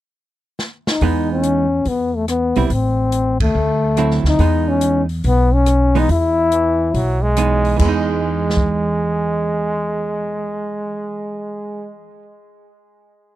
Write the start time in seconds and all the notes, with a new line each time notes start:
0.59 snare
0.87 D#4, snare
1.01 E2 E3 G#3 B3 D#4, kick, open hi-hat
1.32 C#4
1.43 closed hi-hat
1.85 E2 B3, kick, open hi-hat
2.16 A3
2.28 B3, cross-stick, closed hi-hat
2.56 B1 G3 C4 E4, open hi-hat
2.68 A1 B3, kick, open hi-hat
2.72 C4
3.12 closed hi-hat
3.40 D#2 A3, kick, ride
3.55 D2
3.97 D3 F#3 C4 E4, cross-stick, closed hi-hat
4.11 snare
4.23 D2, snare
4.28 D#4
4.39 E2 E3 G#3 B3 D#4, kick, open hi-hat
4.69 C#4
4.81 closed hi-hat
5.09 open hi-hat
5.24 B1 B3, kick, open hi-hat
5.54 C#4
5.66 cross-stick, closed hi-hat
5.95 E3 G#3 B3 D#4, open hi-hat
6.09 E2 E4, kick, open hi-hat
6.52 E3, closed hi-hat
6.94 B1 F#3, kick, open hi-hat
7.22 G#3
7.37 E3 G#3 B3 D#4, cross-stick, closed hi-hat
7.65 open hi-hat
7.76 E2 E3 G#3, kick, crash
7.81 G#3 B3
7.88 D#4
8.50 snare
8.57 kick